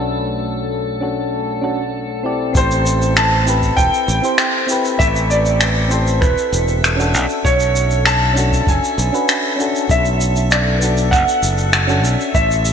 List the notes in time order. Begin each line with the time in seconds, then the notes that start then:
Already playing: B1 A3 C#4 D4 F#4 A4 A5
1.01 C#4 D4 F#4 A4
1.61 C#4 D4 F#4 A4
2.23 C4 E4 G4 D5
2.53 A1 C4 E4 G4 A4 E5, kick, shaker
2.57 C5
2.71 shaker
2.86 shaker
3.02 shaker
3.16 A5, finger snap, shaker
3.44 C4 E4 G4, shaker
3.50 B4
3.62 kick, shaker
3.77 E1 G5, kick, shaker
3.94 shaker
4.08 A1, shaker
4.22 C4 E4 G4 C5, shaker
4.38 finger snap, shaker
4.67 C4 E4 G4, shaker
4.72 B4
4.85 shaker
4.99 A1 E5, kick, shaker
5.16 shaker
5.30 D5, shaker
5.46 shaker
5.61 finger snap, shaker
5.88 C4 E4 G4 C5, shaker
5.93 A4
6.07 shaker
6.21 E1 B4, finger snap, kick, shaker
6.38 shaker
6.52 E1, shaker
6.68 shaker
6.84 finger snap, shaker
6.96 C#4 D4 F#4, shaker
7.02 A4
7.14 B1, shaker
7.29 shaker
7.45 B1 C#5, kick, shaker
7.60 shaker
7.75 shaker
7.90 shaker
8.06 A5, finger snap, shaker
8.34 C#4 D4 F#4, shaker
8.39 A4
8.52 kick, shaker
8.61 A5
8.67 F#1 G#5, kick, shaker
8.84 shaker
8.98 B1, shaker
9.12 C#4 D4 F#4 B4, shaker
9.29 finger snap, shaker
9.56 C#4 D4 F#4, shaker
9.62 A4
9.76 shaker
9.89 B1 E5, kick, shaker
10.05 shaker
10.21 shaker
10.36 shaker
10.51 D5, finger snap, shaker
10.79 B3 D4 F#4, shaker
10.84 A4
10.97 shaker
11.11 F#1 F#5, finger snap, kick, shaker
11.28 shaker
11.42 F#1, shaker
11.58 shaker
11.73 finger snap, shaker
11.87 C#4 D4 F#4 A4, shaker
12.04 B1, shaker
12.20 shaker
12.34 A1 C3 G4 E5, kick, shaker
12.51 shaker
12.65 shaker